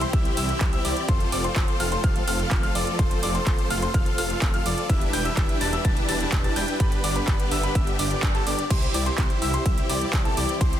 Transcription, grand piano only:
0, 0, Header, 1, 2, 480
1, 0, Start_track
1, 0, Key_signature, 0, "major"
1, 0, Tempo, 476190
1, 1095, Time_signature, 4, 2, 24, 8
1, 10885, End_track
2, 0, Start_track
2, 0, Title_t, "Grand piano"
2, 0, Program_c, 0, 0
2, 16, Note_on_c, 0, 84, 100
2, 106, Note_off_c, 0, 84, 0
2, 136, Note_on_c, 0, 88, 91
2, 346, Note_off_c, 0, 88, 0
2, 376, Note_on_c, 0, 88, 102
2, 706, Note_off_c, 0, 88, 0
2, 735, Note_on_c, 0, 88, 99
2, 826, Note_off_c, 0, 88, 0
2, 855, Note_on_c, 0, 86, 89
2, 1066, Note_off_c, 0, 86, 0
2, 1096, Note_on_c, 0, 84, 93
2, 1306, Note_off_c, 0, 84, 0
2, 1335, Note_on_c, 0, 86, 101
2, 1437, Note_off_c, 0, 86, 0
2, 1455, Note_on_c, 0, 84, 88
2, 1546, Note_off_c, 0, 84, 0
2, 1575, Note_on_c, 0, 84, 97
2, 1786, Note_off_c, 0, 84, 0
2, 1815, Note_on_c, 0, 89, 99
2, 1906, Note_off_c, 0, 89, 0
2, 1936, Note_on_c, 0, 84, 103
2, 2026, Note_off_c, 0, 84, 0
2, 2056, Note_on_c, 0, 89, 95
2, 2266, Note_off_c, 0, 89, 0
2, 2295, Note_on_c, 0, 89, 99
2, 2626, Note_off_c, 0, 89, 0
2, 2654, Note_on_c, 0, 89, 103
2, 2745, Note_off_c, 0, 89, 0
2, 2774, Note_on_c, 0, 86, 88
2, 2985, Note_off_c, 0, 86, 0
2, 3014, Note_on_c, 0, 84, 93
2, 3225, Note_off_c, 0, 84, 0
2, 3254, Note_on_c, 0, 86, 104
2, 3356, Note_off_c, 0, 86, 0
2, 3374, Note_on_c, 0, 84, 88
2, 3466, Note_off_c, 0, 84, 0
2, 3495, Note_on_c, 0, 84, 97
2, 3706, Note_off_c, 0, 84, 0
2, 3735, Note_on_c, 0, 89, 101
2, 3826, Note_off_c, 0, 89, 0
2, 3856, Note_on_c, 0, 84, 98
2, 3946, Note_off_c, 0, 84, 0
2, 3976, Note_on_c, 0, 89, 93
2, 4186, Note_off_c, 0, 89, 0
2, 4216, Note_on_c, 0, 89, 100
2, 4546, Note_off_c, 0, 89, 0
2, 4575, Note_on_c, 0, 89, 102
2, 4666, Note_off_c, 0, 89, 0
2, 4695, Note_on_c, 0, 86, 89
2, 4906, Note_off_c, 0, 86, 0
2, 4934, Note_on_c, 0, 88, 95
2, 5146, Note_off_c, 0, 88, 0
2, 5175, Note_on_c, 0, 91, 101
2, 5277, Note_off_c, 0, 91, 0
2, 5295, Note_on_c, 0, 88, 94
2, 5386, Note_off_c, 0, 88, 0
2, 5655, Note_on_c, 0, 93, 99
2, 5746, Note_off_c, 0, 93, 0
2, 5775, Note_on_c, 0, 88, 100
2, 5866, Note_off_c, 0, 88, 0
2, 5895, Note_on_c, 0, 93, 92
2, 6106, Note_off_c, 0, 93, 0
2, 6135, Note_on_c, 0, 93, 106
2, 6466, Note_off_c, 0, 93, 0
2, 6495, Note_on_c, 0, 93, 102
2, 6586, Note_off_c, 0, 93, 0
2, 6615, Note_on_c, 0, 91, 90
2, 6826, Note_off_c, 0, 91, 0
2, 6854, Note_on_c, 0, 83, 97
2, 7065, Note_off_c, 0, 83, 0
2, 7095, Note_on_c, 0, 86, 104
2, 7197, Note_off_c, 0, 86, 0
2, 7215, Note_on_c, 0, 83, 90
2, 7306, Note_off_c, 0, 83, 0
2, 7335, Note_on_c, 0, 83, 97
2, 7546, Note_off_c, 0, 83, 0
2, 7575, Note_on_c, 0, 88, 99
2, 7666, Note_off_c, 0, 88, 0
2, 7696, Note_on_c, 0, 83, 102
2, 7786, Note_off_c, 0, 83, 0
2, 7816, Note_on_c, 0, 88, 93
2, 8026, Note_off_c, 0, 88, 0
2, 8056, Note_on_c, 0, 86, 101
2, 8386, Note_off_c, 0, 86, 0
2, 8415, Note_on_c, 0, 81, 104
2, 8506, Note_off_c, 0, 81, 0
2, 8535, Note_on_c, 0, 86, 98
2, 8709, Note_off_c, 0, 86, 0
2, 8775, Note_on_c, 0, 84, 90
2, 8986, Note_off_c, 0, 84, 0
2, 9014, Note_on_c, 0, 86, 103
2, 9116, Note_off_c, 0, 86, 0
2, 9134, Note_on_c, 0, 84, 89
2, 9225, Note_off_c, 0, 84, 0
2, 9493, Note_on_c, 0, 88, 101
2, 9585, Note_off_c, 0, 88, 0
2, 9614, Note_on_c, 0, 84, 103
2, 9706, Note_off_c, 0, 84, 0
2, 9734, Note_on_c, 0, 88, 91
2, 9945, Note_off_c, 0, 88, 0
2, 9974, Note_on_c, 0, 86, 98
2, 10305, Note_off_c, 0, 86, 0
2, 10334, Note_on_c, 0, 81, 102
2, 10425, Note_off_c, 0, 81, 0
2, 10454, Note_on_c, 0, 86, 96
2, 10628, Note_off_c, 0, 86, 0
2, 10694, Note_on_c, 0, 84, 93
2, 10885, Note_off_c, 0, 84, 0
2, 10885, End_track
0, 0, End_of_file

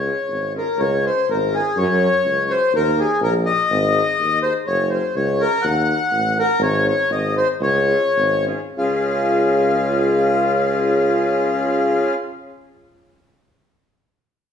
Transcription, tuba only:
0, 0, Header, 1, 2, 480
1, 0, Start_track
1, 0, Key_signature, -5, "major"
1, 0, Tempo, 485044
1, 781, Time_signature, 2, 2, 24, 8
1, 6529, Tempo, 501672
1, 7489, Tempo, 559180
1, 7969, Tempo, 621118
1, 8449, Tempo, 655022
1, 12657, End_track
2, 0, Start_track
2, 0, Title_t, "Tuba"
2, 0, Program_c, 0, 58
2, 0, Note_on_c, 0, 37, 93
2, 122, Note_off_c, 0, 37, 0
2, 279, Note_on_c, 0, 32, 67
2, 601, Note_off_c, 0, 32, 0
2, 768, Note_on_c, 0, 37, 108
2, 1088, Note_off_c, 0, 37, 0
2, 1269, Note_on_c, 0, 32, 97
2, 1582, Note_off_c, 0, 32, 0
2, 1747, Note_on_c, 0, 42, 126
2, 2057, Note_off_c, 0, 42, 0
2, 2226, Note_on_c, 0, 37, 88
2, 2533, Note_off_c, 0, 37, 0
2, 2704, Note_on_c, 0, 39, 115
2, 3010, Note_off_c, 0, 39, 0
2, 3174, Note_on_c, 0, 34, 117
2, 3484, Note_off_c, 0, 34, 0
2, 3661, Note_on_c, 0, 32, 118
2, 3971, Note_off_c, 0, 32, 0
2, 4144, Note_on_c, 0, 39, 85
2, 4456, Note_off_c, 0, 39, 0
2, 4623, Note_on_c, 0, 30, 96
2, 4936, Note_off_c, 0, 30, 0
2, 5104, Note_on_c, 0, 37, 109
2, 5415, Note_off_c, 0, 37, 0
2, 5582, Note_on_c, 0, 39, 112
2, 5891, Note_off_c, 0, 39, 0
2, 6050, Note_on_c, 0, 33, 100
2, 6361, Note_off_c, 0, 33, 0
2, 6522, Note_on_c, 0, 32, 127
2, 6829, Note_off_c, 0, 32, 0
2, 7003, Note_on_c, 0, 32, 102
2, 7321, Note_off_c, 0, 32, 0
2, 7493, Note_on_c, 0, 37, 120
2, 7804, Note_off_c, 0, 37, 0
2, 7974, Note_on_c, 0, 32, 96
2, 8285, Note_off_c, 0, 32, 0
2, 8453, Note_on_c, 0, 37, 104
2, 10918, Note_off_c, 0, 37, 0
2, 12657, End_track
0, 0, End_of_file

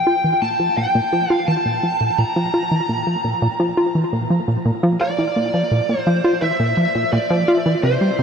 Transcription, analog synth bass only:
0, 0, Header, 1, 2, 480
1, 0, Start_track
1, 0, Tempo, 705882
1, 1486, Time_signature, 4, 2, 24, 8
1, 5595, End_track
2, 0, Start_track
2, 0, Title_t, "Analog synth bass"
2, 0, Program_c, 0, 38
2, 45, Note_on_c, 0, 65, 98
2, 111, Note_off_c, 0, 65, 0
2, 165, Note_on_c, 0, 52, 75
2, 230, Note_off_c, 0, 52, 0
2, 285, Note_on_c, 0, 46, 72
2, 383, Note_off_c, 0, 46, 0
2, 405, Note_on_c, 0, 53, 76
2, 470, Note_off_c, 0, 53, 0
2, 525, Note_on_c, 0, 46, 79
2, 591, Note_off_c, 0, 46, 0
2, 645, Note_on_c, 0, 46, 101
2, 685, Note_off_c, 0, 46, 0
2, 766, Note_on_c, 0, 53, 102
2, 863, Note_off_c, 0, 53, 0
2, 886, Note_on_c, 0, 65, 105
2, 951, Note_off_c, 0, 65, 0
2, 1006, Note_on_c, 0, 52, 83
2, 1071, Note_off_c, 0, 52, 0
2, 1126, Note_on_c, 0, 46, 77
2, 1223, Note_off_c, 0, 46, 0
2, 1245, Note_on_c, 0, 53, 78
2, 1311, Note_off_c, 0, 53, 0
2, 1365, Note_on_c, 0, 46, 77
2, 1430, Note_off_c, 0, 46, 0
2, 1485, Note_on_c, 0, 46, 99
2, 1524, Note_off_c, 0, 46, 0
2, 1606, Note_on_c, 0, 53, 97
2, 1703, Note_off_c, 0, 53, 0
2, 1725, Note_on_c, 0, 65, 93
2, 1791, Note_off_c, 0, 65, 0
2, 1846, Note_on_c, 0, 52, 81
2, 1911, Note_off_c, 0, 52, 0
2, 1966, Note_on_c, 0, 46, 83
2, 2063, Note_off_c, 0, 46, 0
2, 2086, Note_on_c, 0, 53, 74
2, 2151, Note_off_c, 0, 53, 0
2, 2205, Note_on_c, 0, 46, 76
2, 2271, Note_off_c, 0, 46, 0
2, 2326, Note_on_c, 0, 46, 107
2, 2365, Note_off_c, 0, 46, 0
2, 2445, Note_on_c, 0, 53, 97
2, 2543, Note_off_c, 0, 53, 0
2, 2566, Note_on_c, 0, 65, 95
2, 2631, Note_off_c, 0, 65, 0
2, 2687, Note_on_c, 0, 52, 75
2, 2751, Note_off_c, 0, 52, 0
2, 2806, Note_on_c, 0, 46, 78
2, 2904, Note_off_c, 0, 46, 0
2, 2926, Note_on_c, 0, 53, 80
2, 2991, Note_off_c, 0, 53, 0
2, 3046, Note_on_c, 0, 46, 79
2, 3111, Note_off_c, 0, 46, 0
2, 3165, Note_on_c, 0, 46, 106
2, 3204, Note_off_c, 0, 46, 0
2, 3285, Note_on_c, 0, 53, 104
2, 3383, Note_off_c, 0, 53, 0
2, 3405, Note_on_c, 0, 65, 99
2, 3471, Note_off_c, 0, 65, 0
2, 3525, Note_on_c, 0, 52, 77
2, 3591, Note_off_c, 0, 52, 0
2, 3646, Note_on_c, 0, 46, 74
2, 3743, Note_off_c, 0, 46, 0
2, 3766, Note_on_c, 0, 53, 76
2, 3831, Note_off_c, 0, 53, 0
2, 3886, Note_on_c, 0, 46, 82
2, 3951, Note_off_c, 0, 46, 0
2, 4006, Note_on_c, 0, 46, 100
2, 4045, Note_off_c, 0, 46, 0
2, 4126, Note_on_c, 0, 53, 99
2, 4223, Note_off_c, 0, 53, 0
2, 4246, Note_on_c, 0, 65, 99
2, 4311, Note_off_c, 0, 65, 0
2, 4365, Note_on_c, 0, 52, 78
2, 4431, Note_off_c, 0, 52, 0
2, 4485, Note_on_c, 0, 46, 79
2, 4583, Note_off_c, 0, 46, 0
2, 4605, Note_on_c, 0, 53, 77
2, 4670, Note_off_c, 0, 53, 0
2, 4726, Note_on_c, 0, 46, 80
2, 4791, Note_off_c, 0, 46, 0
2, 4846, Note_on_c, 0, 46, 101
2, 4885, Note_off_c, 0, 46, 0
2, 4966, Note_on_c, 0, 53, 107
2, 5063, Note_off_c, 0, 53, 0
2, 5087, Note_on_c, 0, 65, 100
2, 5151, Note_off_c, 0, 65, 0
2, 5207, Note_on_c, 0, 52, 77
2, 5271, Note_off_c, 0, 52, 0
2, 5327, Note_on_c, 0, 48, 78
2, 5424, Note_off_c, 0, 48, 0
2, 5447, Note_on_c, 0, 55, 74
2, 5512, Note_off_c, 0, 55, 0
2, 5568, Note_on_c, 0, 48, 76
2, 5595, Note_off_c, 0, 48, 0
2, 5595, End_track
0, 0, End_of_file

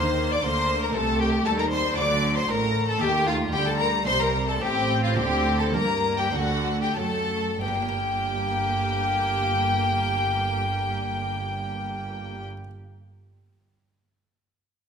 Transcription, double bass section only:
0, 0, Header, 1, 2, 480
1, 0, Start_track
1, 0, Key_signature, -2, "minor"
1, 0, Tempo, 517688
1, 880, Time_signature, 4, 2, 24, 8
1, 3769, Tempo, 551978
1, 4729, Tempo, 584795
1, 5689, Tempo, 637620
1, 6649, Tempo, 657174
1, 11958, End_track
2, 0, Start_track
2, 0, Title_t, "Double bass section"
2, 0, Program_c, 0, 48
2, 0, Note_on_c, 0, 39, 82
2, 401, Note_on_c, 0, 38, 75
2, 405, Note_off_c, 0, 39, 0
2, 868, Note_off_c, 0, 38, 0
2, 882, Note_on_c, 0, 36, 87
2, 1347, Note_off_c, 0, 36, 0
2, 1354, Note_on_c, 0, 39, 80
2, 1821, Note_off_c, 0, 39, 0
2, 1828, Note_on_c, 0, 38, 84
2, 2298, Note_off_c, 0, 38, 0
2, 2306, Note_on_c, 0, 33, 75
2, 2778, Note_off_c, 0, 33, 0
2, 2784, Note_on_c, 0, 39, 95
2, 3263, Note_off_c, 0, 39, 0
2, 3273, Note_on_c, 0, 38, 78
2, 3759, Note_off_c, 0, 38, 0
2, 3769, Note_on_c, 0, 36, 77
2, 4234, Note_off_c, 0, 36, 0
2, 4242, Note_on_c, 0, 33, 82
2, 4729, Note_off_c, 0, 33, 0
2, 4731, Note_on_c, 0, 38, 94
2, 5202, Note_off_c, 0, 38, 0
2, 5204, Note_on_c, 0, 43, 79
2, 5691, Note_off_c, 0, 43, 0
2, 5692, Note_on_c, 0, 38, 83
2, 6150, Note_off_c, 0, 38, 0
2, 6161, Note_on_c, 0, 42, 69
2, 6641, Note_off_c, 0, 42, 0
2, 6652, Note_on_c, 0, 31, 74
2, 10168, Note_off_c, 0, 31, 0
2, 11958, End_track
0, 0, End_of_file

